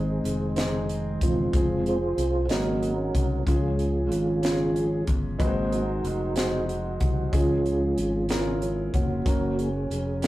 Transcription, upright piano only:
0.00 0.53 G#2 soft
0.00 0.46 C4 medium
0.00 0.43 D#4 medium
0.00 0.44 G#4 medium
0.56 1.39 C4 medium
0.56 1.40 D#4 medium
0.56 1.40 G#4 medium
1.52 2.35 C4 soft
1.52 2.36 F4 soft
1.52 2.36 G#4 medium
2.49 3.42 G#2 medium
2.49 3.32 G#3 medium
2.49 3.33 C#4 medium
2.49 3.33 D#4 medium
2.49 3.33 F#4 soft
2.49 3.33 A#4 medium
3.46 4.39 C#3 soft
3.46 4.29 C#4 medium
3.46 4.29 F4 medium
3.46 4.30 G#4 medium
4.42 5.25 C#4 medium
4.42 5.26 F4 medium
4.42 5.26 G#4 medium
5.38 6.32 G#2 medium
5.38 6.22 G#3 medium
5.38 6.22 C4 medium
5.38 6.22 D#4 medium
5.38 6.22 F#4 medium
5.38 5.46 B4 medium
5.47 6.26 C5 medium
6.35 7.18 G#3 medium
6.35 7.19 C4 medium
6.35 7.19 D#4 medium
6.35 7.19 F#4 medium
6.35 7.20 C5 medium
7.32 8.25 C#3 soft
7.32 8.15 C#4 medium
7.32 7.39 D#4 soft
7.32 8.16 G#4 medium
7.39 8.19 F4 soft
8.29 9.12 C#4 medium
8.29 8.36 E4 medium
8.29 9.13 A#4 medium
8.36 9.16 F4 medium
9.25 10.08 C#4 medium
9.25 10.09 F#4 medium
9.25 10.09 A#4 medium
10.22 10.27 C#4 medium
10.22 10.27 F#4 medium
10.22 10.27 A#4 medium

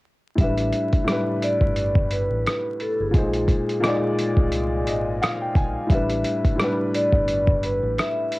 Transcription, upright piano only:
0.35 0.86 A2 medium
0.35 0.87 G3 medium
0.41 0.88 D4 medium
0.41 0.90 B4 medium
1.04 2.01 A2 medium
1.04 2.02 G3 medium
1.09 2.03 D4 medium
1.09 2.05 B4 medium
3.11 3.61 A#2 medium
3.11 3.62 G#3 medium
3.16 3.64 D#4 medium
3.16 3.65 C5 medium
3.80 4.77 A#2 medium
3.80 4.78 G#3 medium
3.85 4.79 D#4 medium
3.85 4.81 D5 loud
4.87 5.19 D#5 medium
5.22 5.40 F5 medium
5.41 5.55 G5 medium
5.56 5.88 G#5 medium
5.87 6.37 A2 medium
5.87 6.38 G3 medium
5.92 6.40 D4 medium
5.92 6.41 B4 medium
6.56 7.53 A2 medium
6.56 7.54 G3 medium
6.61 7.55 D4 medium
6.61 7.57 B4 medium

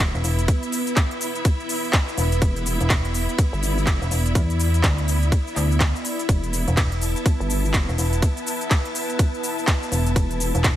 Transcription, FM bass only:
0.14 0.23 E1 loud
0.24 0.47 E1 loud
2.18 2.40 E1 loud
2.81 2.89 E1 medium
2.90 3.27 E1 loud
4.02 4.10 E1 loud
4.11 4.34 E1 loud
4.35 4.82 E2 loud
4.84 5.31 D2 loud
5.56 5.93 D2 loud
6.68 6.76 E1 loud
6.77 7.14 E1 loud
7.89 7.97 E1 loud
7.98 8.21 E1 loud
9.92 10.14 E1 loud
10.55 10.63 E1 loud
10.64 10.76 E1 loud

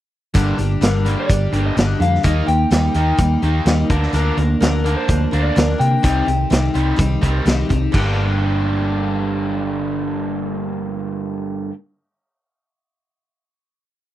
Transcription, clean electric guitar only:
0.84 1.19 A#4 medium
1.20 1.66 D5 medium
1.66 2.01 D#5 medium
2.01 2.22 F5 medium
2.25 2.47 D#5 medium
2.48 2.71 G5 medium
2.72 3.86 G5 medium
4.61 4.94 A#4 medium
4.96 5.42 C5 medium
5.43 5.76 D5 medium
5.79 7.42 G5 medium

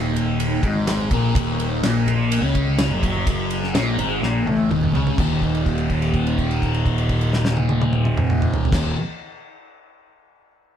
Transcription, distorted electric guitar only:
0.00 0.62 D#2 medium
0.00 0.62 D#3 loud
0.63 1.10 G#2 loud
0.63 1.10 G#3 loud
1.12 1.34 A#2 medium
1.12 1.35 A#3 medium
1.35 1.82 D#2 medium
1.35 1.82 D#3 medium
1.83 2.42 A#2 medium
1.83 2.42 A#3 medium
2.43 2.90 C#3 loud
2.43 2.90 C#4 loud
2.91 3.26 F#2 medium
2.91 3.26 F#3 loud
3.29 3.75 F#2 medium
3.29 3.75 F#3 loud
3.74 3.97 A#2 medium
3.74 3.98 A#3 medium
3.98 4.21 G#2 medium
3.98 4.22 G#3 medium
4.22 4.45 A#2 medium
4.22 4.46 A#3 medium
4.47 4.70 A2 medium
4.47 4.70 A3 loud
4.70 4.93 D#2 medium
4.70 4.94 D#3 medium
4.94 5.17 C#3 medium
4.94 5.18 C#4 medium
5.18 8.68 D#2 medium
5.18 8.70 A#2 loud
5.18 8.71 D#3 medium
8.71 8.93 D#2 medium
8.71 8.94 A#2 medium
8.71 8.95 D#3 loud

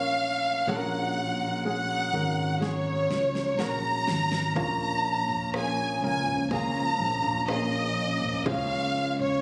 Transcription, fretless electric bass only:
0.00 0.63 A#1 medium
0.67 2.09 A#1 medium
2.13 3.06 G#1 medium
3.10 3.58 C#2 medium
3.58 4.04 A#1 medium
4.08 4.53 G#1 medium
4.56 5.98 A#1 medium
6.02 6.96 C#2 medium
7.00 8.42 A#1 medium
8.46 9.41 C#2 loud

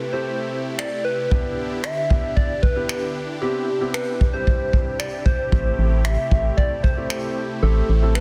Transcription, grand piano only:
0.13 0.77 A3 medium
0.13 0.77 C4 medium
0.13 0.77 E4 medium
0.13 0.77 G4 medium
1.31 1.79 B3 medium
1.31 1.79 D4 medium
1.31 1.79 E4 medium
1.31 1.80 G4 medium
2.10 2.50 B3 medium
2.10 2.50 D4 medium
2.10 2.50 E4 medium
2.10 2.50 G4 medium
2.76 3.16 B3 medium
2.76 3.16 D4 medium
2.76 3.16 E4 medium
2.76 3.16 G4 medium
3.42 3.66 B3 medium
3.42 3.66 C4 medium
3.42 3.66 E4 medium
3.42 3.66 G4 medium
3.81 4.13 B3 medium
3.81 4.13 C4 medium
3.81 4.13 E4 medium
3.81 4.13 G4 medium
4.34 4.98 G3 medium
4.34 4.98 C4 medium
4.34 4.98 E4 medium
4.34 4.98 G4 medium
5.52 6.00 A3 medium
5.52 6.00 C4 medium
5.52 6.00 E4 medium
5.52 6.01 G4 medium
6.31 6.71 A3 medium
6.31 6.71 C4 medium
6.31 6.71 E4 medium
6.31 6.71 G4 medium
6.97 7.37 A3 medium
6.97 7.37 C4 medium
6.97 7.37 E4 medium
6.97 7.37 G4 medium
7.62 7.87 A3 medium
7.62 7.87 C4 medium
7.62 7.87 E4 medium
7.62 7.87 G4 medium
8.02 8.20 A3 medium
8.02 8.20 C4 medium
8.02 8.20 E4 medium
8.02 8.20 A4 medium

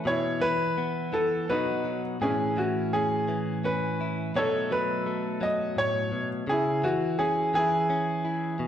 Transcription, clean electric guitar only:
0.00 0.39 E3 medium
0.05 0.41 B2 medium
0.40 1.12 E3 soft
0.78 1.45 B3 soft
1.13 1.49 E3 medium
1.50 2.21 B2 medium
1.50 1.83 F#3 soft
1.50 2.17 B3 soft
1.50 2.18 D#4 soft
1.50 2.18 F#4 medium
1.85 2.16 F#3 soft
2.21 4.31 A2 medium
2.21 2.55 E3 soft
2.21 2.93 C#4 medium
2.21 4.00 E4 soft
2.57 3.27 E3 medium
2.94 3.63 C#4 soft
3.28 4.35 E3 medium
3.64 4.31 C#4 soft
4.01 4.31 E4 soft
4.36 6.11 B2 medium
4.36 4.70 F#3 soft
4.36 5.05 A3 soft
4.36 6.44 D#4 medium
4.36 6.44 A4 medium
4.71 5.40 F#3 medium
5.06 6.47 A3 soft
5.41 6.43 F#3 medium
5.76 6.12 A2 medium
6.12 6.47 B2 soft
6.47 6.83 C#3 medium
6.84 7.53 E3 medium
7.19 7.89 C#4 medium
7.54 8.68 E3 medium
7.90 8.56 C#4 medium
8.25 8.56 E4 soft
8.59 8.68 B2 medium

